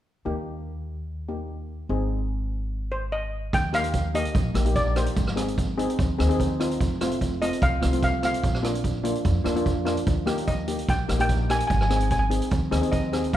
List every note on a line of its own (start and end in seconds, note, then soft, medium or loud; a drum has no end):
0.25 1.86 D#2 medium
0.25 1.26 A#3 medium
0.25 1.26 D#4 medium
0.25 1.26 G4 medium
1.28 1.89 A#3 soft
1.28 1.89 D#4 soft
1.28 1.90 G4 soft
1.89 3.50 G#1 medium
1.89 3.50 C4 medium
1.89 3.50 D#4 medium
1.89 3.50 G#4 medium
2.92 3.13 C5 medium
3.12 3.54 D#5 medium
3.53 4.22 D#2 medium
3.53 3.73 G5 medium
3.53 kick medium
3.53 closed hi-hat medium
3.73 3.98 A#3 medium
3.73 3.98 D#4 medium
3.73 3.98 G4 medium
3.73 4.12 F5 medium
3.73 cross-stick medium
3.73 closed hi-hat medium
3.84 closed hi-hat medium
3.93 kick medium
3.93 closed hi-hat medium
4.14 4.39 A#3 medium
4.14 4.39 D#4 medium
4.14 4.39 G4 medium
4.14 4.78 D#5 medium
4.14 closed hi-hat medium
4.25 closed hi-hat soft
4.35 4.52 A#1 medium
4.35 kick medium
4.35 closed hi-hat soft
4.54 5.06 A#1 medium
4.54 4.61 A#3 medium
4.54 4.61 D#4 medium
4.54 4.62 G4 medium
4.54 cross-stick medium
4.54 closed hi-hat medium
4.66 4.84 A#3 medium
4.66 4.84 D#4 medium
4.66 4.84 G4 medium
4.66 closed hi-hat medium
4.76 4.85 D5 medium
4.76 kick medium
4.76 closed hi-hat medium
4.96 5.17 A#3 medium
4.96 5.16 D#4 medium
4.96 5.17 G4 medium
4.96 6.15 C5 medium
4.96 cross-stick medium
4.96 closed hi-hat medium
5.06 closed hi-hat soft
5.16 5.85 G#1 medium
5.16 kick medium
5.16 closed hi-hat medium
5.27 cross-stick medium
5.36 5.61 C4 medium
5.36 5.61 D#4 medium
5.36 5.61 G#4 medium
5.36 cross-stick medium
5.36 closed hi-hat medium
5.48 closed hi-hat soft
5.58 kick medium
5.58 closed hi-hat medium
5.78 6.02 C4 medium
5.78 6.03 D#4 medium
5.78 6.02 G#4 medium
5.78 closed hi-hat medium
5.90 closed hi-hat soft
5.99 6.16 D#2 medium
5.99 kick medium
5.99 closed hi-hat soft
6.18 6.71 D#2 medium
6.18 6.25 C4 medium
6.18 6.25 D#4 medium
6.18 6.25 G#4 medium
6.18 cross-stick medium
6.18 closed hi-hat medium
6.29 6.47 C4 medium
6.29 6.47 D#4 medium
6.29 6.47 G#4 medium
6.29 closed hi-hat soft
6.40 kick medium
6.40 closed hi-hat soft
6.60 6.80 C4 medium
6.60 6.80 D#4 medium
6.60 6.80 F4 medium
6.60 cross-stick medium
6.60 closed hi-hat medium
6.71 closed hi-hat medium
6.81 7.49 F1 medium
6.81 kick medium
6.81 closed hi-hat medium
7.01 7.25 A3 medium
7.01 7.25 C4 medium
7.01 7.25 F4 medium
7.01 cross-stick medium
7.01 closed hi-hat medium
7.11 closed hi-hat medium
7.21 kick medium
7.21 closed hi-hat medium
7.42 7.66 A3 medium
7.42 7.66 C4 medium
7.42 7.66 F4 medium
7.42 7.51 D#5 medium
7.42 closed hi-hat medium
7.53 closed hi-hat soft
7.62 7.79 C2 medium
7.62 8.03 F5 medium
7.62 kick medium
7.62 closed hi-hat medium
7.81 8.34 C2 medium
7.81 7.88 A3 medium
7.81 7.88 C4 medium
7.81 7.88 F4 medium
7.81 cross-stick medium
7.81 closed hi-hat medium
7.92 8.11 A3 medium
7.92 8.11 C4 medium
7.92 8.11 F4 medium
7.92 closed hi-hat medium
8.02 8.13 F5 medium
8.02 kick medium
8.02 closed hi-hat medium
8.23 8.43 A3 medium
8.23 8.43 C4 medium
8.23 8.43 F4 medium
8.23 9.83 F5 medium
8.23 cross-stick medium
8.23 closed hi-hat medium
8.34 closed hi-hat medium
8.44 9.12 A#1 medium
8.44 kick medium
8.44 closed hi-hat medium
8.54 cross-stick medium
8.63 8.88 A#3 medium
8.63 8.88 D4 medium
8.63 8.88 F4 medium
8.63 cross-stick medium
8.63 closed hi-hat medium
8.75 closed hi-hat medium
8.84 kick medium
8.84 closed hi-hat medium
9.03 9.29 A#3 medium
9.03 9.29 D4 medium
9.03 9.29 F4 medium
9.03 closed hi-hat medium
9.15 closed hi-hat soft
9.25 9.42 F2 medium
9.25 kick medium
9.25 closed hi-hat soft
9.44 9.97 F2 medium
9.44 9.51 A#3 medium
9.44 9.51 D4 medium
9.44 9.51 F4 medium
9.44 cross-stick medium
9.44 closed hi-hat medium
9.55 9.74 A#3 medium
9.55 9.74 D4 medium
9.55 9.74 F4 medium
9.55 closed hi-hat soft
9.66 kick medium
9.66 closed hi-hat soft
9.85 10.06 A#3 medium
9.85 10.06 D4 medium
9.85 10.06 F4 medium
9.85 cross-stick medium
9.85 closed hi-hat medium
9.97 closed hi-hat soft
10.06 10.75 D#2 medium
10.06 kick medium
10.06 closed hi-hat medium
10.26 10.51 A#3 medium
10.26 10.51 D#4 medium
10.26 10.52 G4 medium
10.26 cross-stick medium
10.26 closed hi-hat medium
10.38 closed hi-hat medium
10.47 10.90 D#5 medium
10.47 kick medium
10.47 closed hi-hat medium
10.68 10.92 A#3 medium
10.68 10.93 D#4 medium
10.68 10.92 G4 medium
10.68 closed hi-hat medium
10.79 closed hi-hat medium
10.88 11.06 A#1 medium
10.88 11.18 G5 medium
10.88 kick medium
10.88 closed hi-hat medium
11.08 11.60 A#1 medium
11.08 11.15 A#3 medium
11.08 11.15 D#4 medium
11.08 11.15 G4 medium
11.08 cross-stick medium
11.08 closed hi-hat medium
11.19 11.38 A#3 medium
11.19 11.38 D#4 medium
11.19 11.38 G4 medium
11.19 11.51 G5 medium
11.19 closed hi-hat medium
11.29 kick medium
11.29 closed hi-hat medium
11.49 11.70 A#3 medium
11.49 11.70 D#4 medium
11.49 11.70 G4 medium
11.49 11.58 G#5 medium
11.49 cross-stick medium
11.49 closed hi-hat medium
11.59 11.65 G#5 medium
11.59 closed hi-hat medium
11.67 12.39 G#1 medium
11.67 11.73 G#5 medium
11.67 kick medium
11.67 closed hi-hat medium
11.74 11.81 G#5 soft
11.81 11.88 G#5 medium
11.81 cross-stick medium
11.89 12.15 C4 medium
11.89 12.15 D#4 medium
11.89 12.15 G#4 medium
11.89 11.95 G#5 soft
11.89 cross-stick medium
11.89 closed hi-hat medium
11.96 12.02 G#5 medium
12.00 12.09 G#5 soft
12.00 closed hi-hat medium
12.10 12.18 G#5 medium
12.10 kick medium
12.10 closed hi-hat medium
12.19 12.25 G#5 medium
12.30 12.55 C4 medium
12.30 12.55 D#4 medium
12.30 12.56 G#4 medium
12.30 closed hi-hat medium
12.42 closed hi-hat medium
12.51 12.69 D#2 medium
12.51 kick medium
12.51 closed hi-hat medium
12.71 13.24 D#2 medium
12.71 12.78 C4 medium
12.71 12.78 D#4 medium
12.71 12.78 G#4 medium
12.71 cross-stick medium
12.71 closed hi-hat medium
12.82 13.01 C4 medium
12.82 13.01 D#4 medium
12.82 13.01 G#4 medium
12.82 closed hi-hat soft
12.92 13.34 D#5 medium
12.92 kick medium
12.92 closed hi-hat medium
13.13 13.33 C4 medium
13.13 13.33 D#4 medium
13.13 13.33 G#4 medium
13.13 cross-stick medium
13.13 closed hi-hat medium
13.24 closed hi-hat soft
13.33 13.37 F1 medium
13.33 kick medium
13.33 closed hi-hat soft